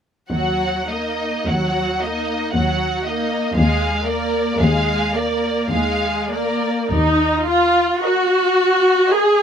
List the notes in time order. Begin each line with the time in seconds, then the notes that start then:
0.31 D#2 F#3 F#4 F#5
0.89 A#3 D#4 D#5
1.47 D#2 F#3 F#4 F#5
2.01 A#3 D#4 D#5
2.54 D#2 F#3 F#4 F#5
3.05 A#3 D#4 D#5
3.56 D#2 G#3 G#4 F5
4.05 A#3 A#4 D5
4.58 D#2 G#3 G#4 F5
5.14 A#3 A#4 D5
5.71 D#2 G#3 G#4 F5
6.32 A#3 A#4 D5
6.91 D#2 D#4
7.47 F4
8.02 F#4 A#4 D#5
9.10 G#4 A#4 D#5